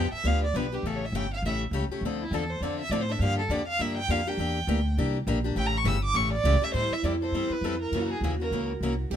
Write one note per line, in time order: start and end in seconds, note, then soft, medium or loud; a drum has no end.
0.00 0.11 F2 loud
0.00 0.13 G5 medium
0.12 0.28 E5 medium
0.12 muted upright bass stroke soft
0.24 0.53 D2 medium
0.24 0.44 D3 medium
0.24 0.44 F3 medium
0.24 0.44 B3 medium
0.24 0.44 D4 medium
0.24 0.44 G4 medium
0.24 0.43 F5 medium
0.44 0.58 D5 medium
0.54 0.82 B1 medium
0.54 0.65 D3 medium
0.54 0.66 F3 medium
0.54 0.66 B3 medium
0.54 0.66 D4 medium
0.54 0.66 G4 medium
0.54 0.76 B4 medium
0.72 0.85 B3 soft
0.72 0.84 D4 medium
0.72 0.84 G4 medium
0.72 0.89 G4 medium
0.83 1.12 A1 medium
0.83 1.04 C#3 medium
0.83 1.04 E3 medium
0.83 1.04 A3 medium
0.83 1.04 C#4 medium
0.83 1.05 G4 medium
0.87 0.98 A4 medium
0.96 1.07 C#5 medium
1.06 1.17 E5 medium
1.12 1.42 G1 medium
1.12 1.25 C#3 medium
1.12 1.25 E3 medium
1.12 1.25 A3 medium
1.12 1.25 C#4 medium
1.12 1.25 G4 loud
1.12 1.32 G5 medium
1.33 1.44 F5 medium
1.42 1.71 A1 medium
1.42 1.63 C#3 medium
1.42 1.63 E3 medium
1.42 1.64 A3 medium
1.42 1.64 C#4 medium
1.42 1.64 G4 medium
1.42 1.55 E5 medium
1.71 1.88 C#2 medium
1.71 1.83 C#3 medium
1.71 1.84 E3 medium
1.71 1.84 A3 medium
1.71 1.84 C#4 medium
1.71 1.84 G4 medium
1.89 2.03 C#4 medium
1.89 2.02 G4 medium
1.89 muted upright bass stroke soft
1.93 2.03 A3 medium
2.01 2.30 D2 medium
2.05 2.23 D3 medium
2.05 2.23 F3 medium
2.05 2.23 C4 medium
2.05 2.23 D4 medium
2.05 2.23 A4 medium
2.22 2.36 E4 medium
2.31 2.60 E2 loud
2.31 2.43 D3 medium
2.31 2.43 F3 medium
2.31 2.43 C4 medium
2.31 2.43 D4 medium
2.31 2.43 A4 medium
2.31 2.52 A4 medium
2.51 2.64 C5 medium
2.61 2.89 F2 medium
2.61 2.81 D3 medium
2.61 2.81 F3 medium
2.61 2.81 C4 medium
2.61 2.82 D4 medium
2.61 2.82 A4 medium
2.61 2.79 D5 medium
2.80 2.93 E5 loud
2.90 3.19 A2 loud
2.90 3.02 D3 medium
2.90 3.02 F3 medium
2.90 3.02 C4 loud
2.90 3.02 D4 loud
2.90 3.02 A4 loud
2.90 3.03 D5 medium
3.02 3.13 C5 medium
3.09 3.21 C4 soft
3.09 3.20 D4 medium
3.09 3.20 A4 medium
3.09 3.23 E5 medium
3.19 3.48 G2 medium
3.19 3.40 D3 medium
3.19 3.40 F3 medium
3.19 3.40 A#3 medium
3.19 3.40 D4 medium
3.19 3.41 G4 medium
3.19 3.38 F5 loud
3.39 3.53 A4 medium
3.49 3.78 F2 loud
3.49 3.60 D3 medium
3.49 3.61 F3 medium
3.49 3.61 A#3 medium
3.49 3.61 D4 medium
3.49 3.61 G4 medium
3.49 3.67 D5 medium
3.68 3.83 F5 loud
3.79 4.08 G2 medium
3.79 3.98 D3 medium
3.79 3.99 F3 medium
3.79 3.99 A#3 medium
3.79 3.99 D4 medium
3.79 3.99 G4 medium
3.79 3.97 E5 medium
3.98 4.12 G5 loud
4.08 4.37 F2 loud
4.08 4.20 D3 medium
4.08 4.20 F3 medium
4.08 4.20 A#3 medium
4.08 4.20 D4 medium
4.08 4.20 G4 medium
4.08 4.29 F5 medium
4.27 4.38 A#3 medium
4.27 4.38 D4 medium
4.27 4.38 G4 medium
4.27 4.98 G5 medium
4.37 4.67 E2 medium
4.37 4.58 E3 medium
4.37 4.58 A#3 medium
4.37 4.58 D4 medium
4.37 4.58 G4 medium
4.67 4.96 D2 loud
4.67 4.79 E3 medium
4.67 4.79 A#3 loud
4.67 4.79 D4 medium
4.67 4.79 G4 loud
4.98 5.26 C2 medium
4.98 5.17 E3 medium
4.98 5.17 A#3 medium
4.98 5.17 D4 medium
4.98 5.17 G4 medium
5.27 5.55 A#1 loud
5.27 5.38 E3 medium
5.27 5.38 A#3 loud
5.27 5.38 D4 loud
5.27 5.38 G4 loud
5.44 5.57 A#3 medium
5.44 5.56 D4 medium
5.44 5.56 G4 medium
5.56 5.84 A1 medium
5.56 5.75 C#3 medium
5.56 5.75 E3 medium
5.56 5.76 A3 medium
5.56 5.76 C#4 medium
5.56 5.76 G4 medium
5.56 5.68 G5 medium
5.67 5.79 A#5 medium
5.78 5.89 C#6 medium
5.84 6.13 G1 loud
5.84 5.96 C#3 loud
5.84 5.96 E3 medium
5.84 5.96 A3 medium
5.84 5.97 C#4 medium
5.84 5.97 G4 loud
5.84 6.04 E6 medium
6.05 6.18 D6 loud
6.14 6.43 A1 medium
6.14 6.34 C#3 medium
6.14 6.34 E3 medium
6.14 6.34 A3 medium
6.14 6.34 C#4 medium
6.14 6.34 G4 medium
6.14 6.33 C#6 medium
6.33 6.66 D5 loud
6.44 6.60 C#2 loud
6.44 6.56 C#3 medium
6.44 6.56 E3 medium
6.44 6.56 A3 loud
6.44 6.56 C#4 loud
6.44 6.56 G4 medium
6.61 6.74 A3 medium
6.61 6.74 C#4 medium
6.61 6.74 G4 medium
6.61 6.74 E5 loud
6.74 6.90 A2 medium
6.74 6.94 E3 medium
6.74 6.94 G3 medium
6.74 6.94 C4 medium
6.74 6.94 E4 medium
6.74 6.94 A4 medium
6.74 6.95 C5 loud
6.91 7.05 E5 loud
6.91 muted upright bass stroke soft
7.03 7.31 F2 medium
7.03 7.14 E3 medium
7.03 7.15 G3 medium
7.03 7.15 C4 medium
7.03 7.15 E4 medium
7.03 7.15 A4 medium
7.03 7.13 D5 medium
7.22 7.33 C4 soft
7.22 7.34 E4 soft
7.22 7.34 A4 soft
7.22 7.54 C5 medium
7.32 7.49 G2 medium
7.32 7.53 E3 medium
7.32 7.54 G3 medium
7.32 7.53 C4 medium
7.32 7.54 E4 medium
7.32 7.54 A4 medium
7.50 7.81 B4 medium
7.50 muted upright bass stroke soft
7.61 7.91 F2 medium
7.61 7.74 E3 medium
7.61 7.74 G3 medium
7.61 7.74 C4 medium
7.61 7.74 E4 medium
7.61 7.75 A4 medium
7.82 8.09 A#4 medium
7.91 8.20 F#2 medium
7.91 8.13 C#3 medium
7.91 8.13 E3 medium
7.91 8.13 A#3 medium
7.91 8.13 C#4 medium
7.91 8.13 F#4 medium
8.12 8.22 G#4 medium
8.21 8.50 D#2 medium
8.21 8.34 C#3 medium
8.21 8.34 E3 medium
8.21 8.34 A#3 medium
8.21 8.34 C#4 medium
8.21 8.31 G#4 medium
8.25 8.34 F#4 medium
8.40 8.51 A#3 soft
8.40 8.52 C#4 soft
8.40 8.52 F#4 soft
8.40 8.68 A#4 medium
8.51 8.80 C#2 medium
8.51 8.71 C#3 medium
8.51 8.71 E3 medium
8.51 8.71 A#3 medium
8.51 8.72 C#4 medium
8.51 8.72 F#4 medium
8.81 9.10 C2 medium
8.81 8.93 C#3 medium
8.81 8.93 E3 medium
8.81 8.93 A#3 medium
8.81 8.93 C#4 medium
8.81 8.93 F#4 loud
9.10 9.16 B1 medium
9.10 9.16 B2 medium
9.10 9.16 G4 medium